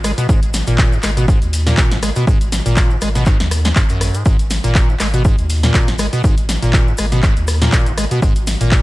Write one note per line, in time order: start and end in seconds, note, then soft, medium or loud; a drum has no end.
0.00 0.12 G#1 medium
0.04 0.12 G#3 medium
0.04 cross-stick medium
0.04 open hi-hat loud
0.04 maracas medium
0.18 0.27 B2 loud
0.18 closed hi-hat medium
0.18 maracas soft
0.29 0.62 G#1 loud
0.29 0.40 G#2 medium
0.29 kick loud
0.29 maracas medium
0.42 closed hi-hat medium
0.42 maracas soft
0.54 snare medium
0.54 open hi-hat loud
0.54 maracas loud
0.67 0.99 G#1 medium
0.67 0.94 A#2 loud
0.67 closed hi-hat medium
0.67 maracas soft
0.78 kick loud
0.78 clap loud
0.78 maracas medium
0.92 0.98 G#2 medium
0.92 maracas soft
1.03 1.36 G#1 medium
1.03 1.11 G#3 medium
1.03 cross-stick medium
1.03 clap medium
1.03 open hi-hat loud
1.03 maracas medium
1.17 1.26 B2 loud
1.17 closed hi-hat medium
1.17 maracas soft
1.28 1.39 G#2 medium
1.28 kick loud
1.28 maracas medium
1.42 1.73 D#2 medium
1.42 closed hi-hat soft
1.42 maracas soft
1.53 open hi-hat loud
1.53 maracas loud
1.67 1.93 A#2 loud
1.67 snare medium
1.67 closed hi-hat medium
1.67 maracas soft
1.77 2.11 G#1 medium
1.77 kick loud
1.77 clap loud
1.77 maracas medium
1.91 1.98 G#2 medium
1.91 snare medium
1.91 closed hi-hat medium
1.91 maracas soft
2.03 2.10 G#3 medium
2.03 cross-stick medium
2.03 open hi-hat loud
2.03 maracas loud
2.16 2.25 B2 loud
2.16 closed hi-hat medium
2.16 maracas soft
2.27 2.60 G#1 loud
2.27 kick loud
2.27 maracas medium
2.41 closed hi-hat soft
2.41 maracas soft
2.52 snare medium
2.52 open hi-hat loud
2.52 maracas loud
2.66 2.97 G#1 medium
2.66 2.92 A#2 loud
2.66 closed hi-hat medium
2.66 maracas soft
2.77 kick loud
2.77 clap loud
2.77 maracas medium
2.90 2.97 G#2 medium
2.90 maracas soft
3.01 3.35 G#1 medium
3.01 3.09 G#3 medium
3.01 cross-stick medium
3.01 open hi-hat loud
3.01 maracas medium
3.15 3.25 B2 loud
3.15 snare soft
3.15 closed hi-hat medium
3.15 maracas soft
3.26 3.38 G#2 medium
3.26 kick loud
3.26 clap medium
3.26 maracas medium
3.40 3.72 D#2 medium
3.40 snare medium
3.40 closed hi-hat soft
3.40 maracas soft
3.51 cross-stick medium
3.51 open hi-hat loud
3.51 maracas medium
3.65 3.69 G#3 medium
3.65 snare medium
3.65 closed hi-hat medium
3.65 maracas soft
3.76 4.09 G#1 medium
3.76 3.84 G#2 medium
3.76 kick loud
3.76 clap loud
3.76 maracas medium
3.89 4.16 F#2 medium
3.89 closed hi-hat medium
3.89 maracas soft
4.01 cross-stick medium
4.01 open hi-hat loud
4.01 maracas loud
4.14 4.24 G#2 medium
4.14 closed hi-hat medium
4.14 maracas soft
4.25 4.59 G#1 loud
4.25 4.37 G#2 medium
4.25 kick loud
4.25 maracas medium
4.39 closed hi-hat soft
4.39 maracas soft
4.50 snare medium
4.50 open hi-hat loud
4.50 maracas medium
4.64 4.96 G#1 medium
4.64 4.90 A#2 loud
4.64 closed hi-hat medium
4.64 maracas soft
4.75 kick loud
4.75 clap loud
4.75 maracas medium
4.89 4.95 G#2 medium
4.89 maracas soft
5.00 5.33 G#1 medium
5.00 5.08 G#3 medium
5.00 cross-stick medium
5.00 clap medium
5.00 open hi-hat loud
5.00 maracas medium
5.14 5.23 B2 loud
5.14 closed hi-hat medium
5.14 maracas soft
5.25 5.36 G#2 medium
5.25 kick loud
5.25 maracas medium
5.38 5.70 D#2 medium
5.38 closed hi-hat soft
5.38 maracas soft
5.50 open hi-hat loud
5.50 maracas medium
5.63 5.89 A#2 loud
5.63 snare medium
5.63 closed hi-hat medium
5.63 maracas soft
5.74 6.07 G#1 medium
5.74 kick loud
5.74 clap loud
5.74 maracas medium
5.88 5.94 G#2 medium
5.88 snare medium
5.88 closed hi-hat medium
5.88 maracas soft
5.99 6.07 G#3 medium
5.99 cross-stick medium
5.99 open hi-hat loud
5.99 maracas medium
6.13 6.22 B2 loud
6.13 closed hi-hat medium
6.13 maracas soft
6.24 6.57 G#1 loud
6.24 6.35 G#2 medium
6.24 kick loud
6.24 maracas medium
6.37 closed hi-hat medium
6.37 maracas soft
6.49 snare medium
6.49 open hi-hat loud
6.49 maracas medium
6.62 6.94 G#1 medium
6.62 6.89 A#2 loud
6.62 closed hi-hat medium
6.62 maracas soft
6.73 kick loud
6.73 clap loud
6.73 maracas soft
6.87 6.93 G#2 medium
6.87 maracas soft
6.98 7.31 G#1 medium
6.98 7.06 G#3 medium
6.98 cross-stick medium
6.98 open hi-hat loud
6.98 maracas medium
7.12 7.21 B2 loud
7.12 snare soft
7.12 closed hi-hat medium
7.12 maracas soft
7.23 7.34 G#2 medium
7.23 kick loud
7.23 clap medium
7.23 maracas soft
7.37 7.68 D#2 medium
7.37 closed hi-hat soft
7.37 maracas soft
7.47 cross-stick medium
7.47 open hi-hat loud
7.47 maracas medium
7.61 7.88 A#2 loud
7.61 snare medium
7.61 closed hi-hat medium
7.61 maracas soft
7.72 8.06 G#1 medium
7.72 kick loud
7.72 clap loud
7.72 maracas medium
7.86 7.93 G#2 medium
7.86 closed hi-hat medium
7.86 maracas soft
7.97 8.05 G#3 medium
7.97 cross-stick medium
7.97 open hi-hat loud
7.97 maracas medium
8.11 8.20 B2 loud
8.11 closed hi-hat medium
8.11 maracas soft
8.22 8.55 G#1 loud
8.22 8.34 G#2 medium
8.22 kick loud
8.22 maracas medium
8.36 closed hi-hat medium
8.36 maracas soft
8.47 snare medium
8.47 open hi-hat loud
8.47 maracas medium
8.61 8.82 G#1 medium
8.61 8.82 A#2 loud
8.61 closed hi-hat medium
8.61 maracas soft
8.71 kick loud
8.71 clap loud
8.71 maracas soft